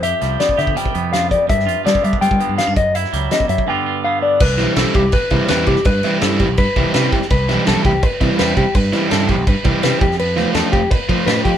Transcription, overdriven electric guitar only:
X:1
M:4/4
L:1/8
Q:1/4=166
K:C
V:1 name="Overdriven electric guitar"
z8 | z8 | z8 | z [E,G,CE] [E,G,CE] z2 [E,G,CE] [E,G,CE] z |
z [E,G,CE] [E,G,CE] z2 [E,G,CE] [E,G,CE] z | z [E,G,CE] [E,G,CE] z2 [E,G,CE] [E,G,CE] z | z [E,G,CE] [E,G,CE] z2 [E,G,CE] [E,G,CE] z | z [F,A,CF] [F,A,CF] z2 [F,A,CF] [F,A,CF] z |]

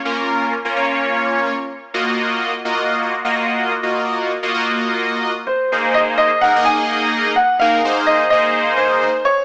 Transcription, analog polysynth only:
X:1
M:4/4
L:1/16
Q:1/4=127
K:Abmix
V:1 name="Analog polysynth"
[B,DFB]4 z [B,DFB] [B,DFd]6- [B,DFd] z3 | [B,FGe]4- [B,FGe] z [B,FGe]4 z [B,FGe]4 z | [B,FGe]4 z [B,FGe] [B,FGe]6- [B,FGe] z3 | [B,EAc]4- [B,EAc] z [B,EAB] [B,EAe]6- [B,EAe] z2 |
[B,EAB]2 [B,EAc]3 z [B,EAc]6- [B,EAc] z3 |]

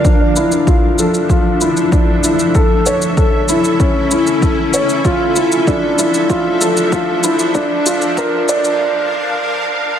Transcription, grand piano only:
X:1
M:4/4
L:1/8
Q:1/4=96
K:Dm
V:1 name="Grand piano"
D E F A F E D E | A ^c A E ^C E A c | F E D E F A F E | D F B d z4 |]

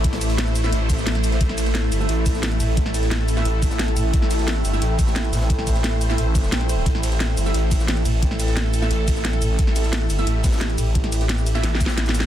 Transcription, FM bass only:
X:1
M:4/4
L:1/8
Q:1/4=176
K:Am
V:1 name="FM bass" clef=bass
A,,,4 z4 | z6 z A,,,- | A,,,4 z3 A,,, | z6 z A,,,- |
A,,,4 A,,,2 z2 | z6 z A,,,- | A,,,4 z3 A,,, | z6 z A,,,- |
A,,,4 z4 |]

